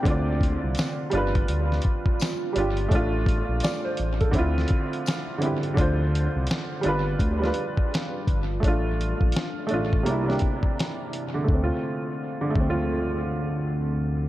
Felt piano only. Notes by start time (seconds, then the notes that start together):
Already playing: G5
0.03 D3 C4
0.08 F4 D5
1.10 G3 D4
1.15 F4 B4
2.53 G3 D4
2.58 F4 G4
2.88 A3 D4
2.95 F4
3.63 D5
3.84 C5
4.21 A4
4.31 D3 C4
4.36 E4 F4
5.38 D3 C4
5.43 E4 G4
5.74 D3 D4
5.79 F4 C5
6.81 G3 D4
6.86 F4 B4
7.39 G3 D4
7.44 F4 B4
8.60 A3 D4
8.68 F4
9.67 A3 D4
9.74 F4
10.03 C3 A#3
10.08 D4 E4
10.24 C3 A#3
10.28 D4 G4
11.34 D3
11.44 A3
11.54 C4
11.64 F4
12.41 D3
12.50 A3
12.60 C4
12.70 F4